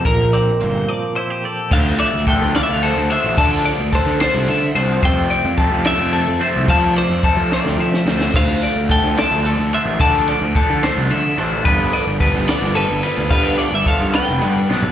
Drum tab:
CC |------------|x-----------|------------|------------|
RD |------------|--x-x-x-x-x-|x-x-x-x-x-x-|x-x-x-x-x-x-|
HH |x-x-x-------|------------|------------|------------|
SD |------------|------o-----|------o-----|------o-----|
FT |------------|------------|------------|------------|
BD |o-----------|o---o-------|o---o-------|o---o-------|

CC |------------|x-----------|------------|------------|
RD |x-x-x-------|--x-x-x-x-x-|x-x-x-x-x-x-|x-x-x-x-x-x-|
HH |------------|------------|------------|------------|
SD |------oo-ooo|------o-----|------o-----|------o-----|
FT |------------|------------|------------|------------|
BD |o---o-------|o---o-------|o---o-------|o---o-------|

CC |------------|
RD |x-x-x-x-x---|
HH |------------|
SD |------o---o-|
FT |-----------o|
BD |o---o-------|